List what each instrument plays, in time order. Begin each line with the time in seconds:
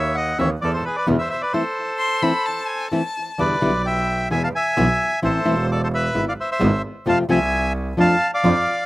Already playing: double bass D#2, bandoneon C#5 E5
0.15 bandoneon D#5 F#5
0.38 double bass D#2, nylon-string guitar E3 A3 C4 E4, bandoneon C#5 E5
0.61 double bass E2, bandoneon A4 D5
0.73 bandoneon A4 C5
0.85 bandoneon G#4 B4
0.96 bandoneon B4 D5
1.07 double bass E2, nylon-string guitar B2 D3 G#3 B3 E4
1.19 bandoneon C5 E5
1.30 bandoneon C5 E5
1.41 bandoneon B4 D5
1.52 nylon-string guitar E3 A3 C4 E4, bandoneon A4 C5
1.99 violin C6
2.22 nylon-string guitar E3 A3 C4 E4, violin B5
2.46 violin A5
2.68 violin G#5
2.91 nylon-string guitar E3 A3 C4 E4, violin A5
3.38 double bass E2, nylon-string guitar B2 D3 G3 B3 E4, bandoneon B4 D5
3.61 double bass B1, nylon-string guitar B2 D3 G3 B3 E4
3.86 bandoneon E5 G5
4.30 double bass E2, nylon-string guitar B2 E3 G#3 B3 E4, bandoneon E5 G#5
4.44 bandoneon F5 A5
4.55 bandoneon E5 G#5
4.77 double bass B1, nylon-string guitar B2 E3 G#3 B3 E4
5.22 double bass A1, nylon-string guitar E3 A3 C4 E4, bandoneon A4 C5
5.45 double bass E1, nylon-string guitar E3 A3 C4 E4
5.71 bandoneon A4 D5
5.84 bandoneon A4 C5
5.94 bandoneon B4 E5
6.14 double bass G#1, nylon-string guitar G#3 B3 E4
6.28 bandoneon D5 F5
6.40 bandoneon C5 E5
6.51 bandoneon C5 E5
6.60 double bass G#1, nylon-string guitar G#3 B3 E4
7.06 double bass F2, nylon-string guitar C3 F3 A3 C4 F4, bandoneon F5 A5
7.29 double bass C2, nylon-string guitar C3 F3 A3 C4 F4, bandoneon E5 G#5
7.97 double bass F2, nylon-string guitar F3 A3 D4 F4, bandoneon F5 A5
8.34 bandoneon D5 F5
8.44 double bass F2, nylon-string guitar F3 A3 D4 F4